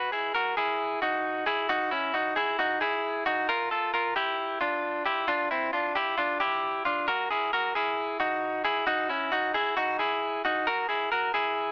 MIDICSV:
0, 0, Header, 1, 2, 480
1, 0, Start_track
1, 0, Tempo, 448430
1, 1810, Time_signature, 4, 2, 24, 8
1, 12543, End_track
2, 0, Start_track
2, 0, Title_t, "Clean electric guitar"
2, 0, Program_c, 0, 27
2, 0, Note_on_c, 0, 66, 81
2, 0, Note_on_c, 0, 71, 110
2, 127, Note_off_c, 0, 66, 0
2, 127, Note_off_c, 0, 71, 0
2, 131, Note_on_c, 0, 68, 73
2, 140, Note_on_c, 0, 64, 58
2, 365, Note_off_c, 0, 64, 0
2, 370, Note_off_c, 0, 68, 0
2, 370, Note_on_c, 0, 70, 77
2, 381, Note_on_c, 0, 66, 59
2, 606, Note_off_c, 0, 66, 0
2, 609, Note_off_c, 0, 70, 0
2, 611, Note_on_c, 0, 68, 84
2, 620, Note_on_c, 0, 64, 61
2, 1061, Note_off_c, 0, 68, 0
2, 1066, Note_off_c, 0, 64, 0
2, 1091, Note_on_c, 0, 66, 66
2, 1098, Note_on_c, 0, 63, 56
2, 1541, Note_off_c, 0, 66, 0
2, 1546, Note_off_c, 0, 63, 0
2, 1567, Note_on_c, 0, 68, 72
2, 1576, Note_on_c, 0, 64, 61
2, 1808, Note_off_c, 0, 68, 0
2, 1812, Note_on_c, 0, 66, 108
2, 1813, Note_off_c, 0, 64, 0
2, 1820, Note_on_c, 0, 63, 82
2, 2048, Note_on_c, 0, 64, 78
2, 2051, Note_off_c, 0, 66, 0
2, 2053, Note_off_c, 0, 63, 0
2, 2057, Note_on_c, 0, 61, 61
2, 2288, Note_on_c, 0, 66, 70
2, 2289, Note_off_c, 0, 64, 0
2, 2292, Note_off_c, 0, 61, 0
2, 2296, Note_on_c, 0, 63, 58
2, 2523, Note_off_c, 0, 66, 0
2, 2527, Note_on_c, 0, 68, 75
2, 2534, Note_off_c, 0, 63, 0
2, 2539, Note_on_c, 0, 64, 57
2, 2766, Note_off_c, 0, 68, 0
2, 2771, Note_on_c, 0, 66, 76
2, 2775, Note_off_c, 0, 64, 0
2, 2779, Note_on_c, 0, 63, 59
2, 3003, Note_off_c, 0, 66, 0
2, 3007, Note_on_c, 0, 68, 77
2, 3015, Note_off_c, 0, 63, 0
2, 3018, Note_on_c, 0, 64, 61
2, 3460, Note_off_c, 0, 68, 0
2, 3466, Note_off_c, 0, 64, 0
2, 3489, Note_on_c, 0, 66, 77
2, 3499, Note_on_c, 0, 63, 56
2, 3730, Note_off_c, 0, 66, 0
2, 3734, Note_on_c, 0, 70, 98
2, 3735, Note_off_c, 0, 63, 0
2, 3741, Note_on_c, 0, 65, 82
2, 3969, Note_off_c, 0, 70, 0
2, 3970, Note_off_c, 0, 65, 0
2, 3973, Note_on_c, 0, 69, 70
2, 3983, Note_on_c, 0, 65, 55
2, 4210, Note_off_c, 0, 65, 0
2, 4210, Note_off_c, 0, 69, 0
2, 4214, Note_on_c, 0, 70, 72
2, 4223, Note_on_c, 0, 65, 59
2, 4448, Note_off_c, 0, 65, 0
2, 4452, Note_on_c, 0, 67, 78
2, 4453, Note_off_c, 0, 70, 0
2, 4458, Note_on_c, 0, 64, 63
2, 4903, Note_off_c, 0, 67, 0
2, 4907, Note_off_c, 0, 64, 0
2, 4931, Note_on_c, 0, 65, 74
2, 4939, Note_on_c, 0, 62, 57
2, 5383, Note_off_c, 0, 65, 0
2, 5387, Note_off_c, 0, 62, 0
2, 5411, Note_on_c, 0, 67, 70
2, 5418, Note_on_c, 0, 64, 55
2, 5646, Note_off_c, 0, 67, 0
2, 5650, Note_on_c, 0, 65, 106
2, 5655, Note_off_c, 0, 64, 0
2, 5659, Note_on_c, 0, 62, 84
2, 5891, Note_off_c, 0, 65, 0
2, 5895, Note_off_c, 0, 62, 0
2, 5897, Note_on_c, 0, 64, 85
2, 5905, Note_on_c, 0, 60, 60
2, 6129, Note_off_c, 0, 64, 0
2, 6134, Note_on_c, 0, 65, 71
2, 6137, Note_off_c, 0, 60, 0
2, 6142, Note_on_c, 0, 62, 56
2, 6369, Note_off_c, 0, 65, 0
2, 6374, Note_on_c, 0, 67, 80
2, 6377, Note_off_c, 0, 62, 0
2, 6384, Note_on_c, 0, 64, 58
2, 6606, Note_off_c, 0, 67, 0
2, 6611, Note_on_c, 0, 65, 80
2, 6618, Note_off_c, 0, 64, 0
2, 6621, Note_on_c, 0, 62, 64
2, 6847, Note_off_c, 0, 65, 0
2, 6852, Note_on_c, 0, 67, 87
2, 6856, Note_off_c, 0, 62, 0
2, 6861, Note_on_c, 0, 64, 57
2, 7303, Note_off_c, 0, 67, 0
2, 7308, Note_off_c, 0, 64, 0
2, 7335, Note_on_c, 0, 65, 77
2, 7345, Note_on_c, 0, 62, 57
2, 7574, Note_off_c, 0, 65, 0
2, 7577, Note_on_c, 0, 70, 103
2, 7579, Note_off_c, 0, 62, 0
2, 7585, Note_on_c, 0, 66, 86
2, 7814, Note_off_c, 0, 70, 0
2, 7815, Note_off_c, 0, 66, 0
2, 7820, Note_on_c, 0, 68, 82
2, 7830, Note_on_c, 0, 64, 58
2, 8056, Note_off_c, 0, 68, 0
2, 8057, Note_off_c, 0, 64, 0
2, 8061, Note_on_c, 0, 70, 75
2, 8070, Note_on_c, 0, 66, 65
2, 8294, Note_off_c, 0, 66, 0
2, 8297, Note_off_c, 0, 70, 0
2, 8299, Note_on_c, 0, 68, 78
2, 8308, Note_on_c, 0, 64, 64
2, 8747, Note_off_c, 0, 68, 0
2, 8752, Note_off_c, 0, 64, 0
2, 8774, Note_on_c, 0, 66, 73
2, 8781, Note_on_c, 0, 63, 57
2, 9224, Note_off_c, 0, 66, 0
2, 9228, Note_off_c, 0, 63, 0
2, 9254, Note_on_c, 0, 68, 77
2, 9261, Note_on_c, 0, 64, 65
2, 9487, Note_off_c, 0, 68, 0
2, 9491, Note_on_c, 0, 66, 104
2, 9496, Note_off_c, 0, 64, 0
2, 9496, Note_on_c, 0, 63, 91
2, 9731, Note_off_c, 0, 66, 0
2, 9733, Note_off_c, 0, 63, 0
2, 9735, Note_on_c, 0, 64, 74
2, 9743, Note_on_c, 0, 61, 64
2, 9973, Note_off_c, 0, 64, 0
2, 9974, Note_on_c, 0, 66, 79
2, 9977, Note_off_c, 0, 61, 0
2, 9983, Note_on_c, 0, 63, 54
2, 10211, Note_off_c, 0, 66, 0
2, 10215, Note_on_c, 0, 68, 78
2, 10217, Note_off_c, 0, 63, 0
2, 10224, Note_on_c, 0, 64, 59
2, 10450, Note_off_c, 0, 68, 0
2, 10455, Note_on_c, 0, 66, 88
2, 10458, Note_off_c, 0, 64, 0
2, 10462, Note_on_c, 0, 63, 59
2, 10691, Note_off_c, 0, 66, 0
2, 10695, Note_on_c, 0, 68, 75
2, 10697, Note_off_c, 0, 63, 0
2, 10705, Note_on_c, 0, 64, 60
2, 11144, Note_off_c, 0, 68, 0
2, 11149, Note_off_c, 0, 64, 0
2, 11182, Note_on_c, 0, 66, 67
2, 11191, Note_on_c, 0, 63, 57
2, 11417, Note_off_c, 0, 66, 0
2, 11421, Note_off_c, 0, 63, 0
2, 11421, Note_on_c, 0, 70, 94
2, 11430, Note_on_c, 0, 66, 78
2, 11650, Note_off_c, 0, 66, 0
2, 11654, Note_on_c, 0, 68, 75
2, 11656, Note_off_c, 0, 70, 0
2, 11664, Note_on_c, 0, 64, 54
2, 11892, Note_off_c, 0, 68, 0
2, 11895, Note_off_c, 0, 64, 0
2, 11899, Note_on_c, 0, 70, 74
2, 11910, Note_on_c, 0, 66, 52
2, 12133, Note_off_c, 0, 66, 0
2, 12135, Note_off_c, 0, 70, 0
2, 12138, Note_on_c, 0, 68, 78
2, 12145, Note_on_c, 0, 64, 58
2, 12543, Note_off_c, 0, 64, 0
2, 12543, Note_off_c, 0, 68, 0
2, 12543, End_track
0, 0, End_of_file